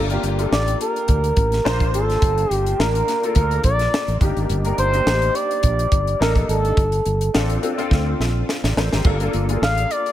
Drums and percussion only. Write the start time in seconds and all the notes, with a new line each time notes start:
0.10 closed hi-hat
0.23 closed hi-hat
0.39 closed hi-hat
0.53 snare
0.68 closed hi-hat
0.81 closed hi-hat
0.96 closed hi-hat
1.08 kick, closed hi-hat
1.24 closed hi-hat
1.36 kick, closed hi-hat
1.52 snare, closed hi-hat
1.66 snare
1.80 kick, closed hi-hat
1.94 closed hi-hat
2.10 snare, closed hi-hat
2.22 kick, closed hi-hat
2.38 closed hi-hat
2.51 closed hi-hat
2.67 closed hi-hat
2.80 snare
2.95 closed hi-hat
3.08 snare, closed hi-hat
3.23 closed hi-hat
3.35 kick, closed hi-hat
3.51 closed hi-hat
3.64 kick, closed hi-hat
3.79 snare, closed hi-hat
3.94 snare
4.08 closed hi-hat
4.21 kick, closed hi-hat
4.37 closed hi-hat
4.49 closed hi-hat
4.65 closed hi-hat
4.78 closed hi-hat
4.94 closed hi-hat
5.07 snare
5.22 closed hi-hat
5.35 closed hi-hat
5.51 closed hi-hat
5.63 kick, closed hi-hat
5.79 closed hi-hat
5.92 kick, closed hi-hat
6.07 closed hi-hat
6.22 snare
6.36 kick, closed hi-hat
6.49 closed hi-hat
6.65 closed hi-hat
6.77 kick, closed hi-hat
6.92 closed hi-hat
7.06 closed hi-hat
7.21 closed hi-hat
7.35 snare
7.50 closed hi-hat
7.63 closed hi-hat
7.79 closed hi-hat
7.91 kick, snare
8.21 snare
8.49 snare
8.64 snare
8.77 snare
8.93 snare
9.05 kick, splash
9.20 closed hi-hat
9.33 closed hi-hat
9.49 closed hi-hat
9.63 snare
9.78 closed hi-hat
9.91 closed hi-hat
10.06 closed hi-hat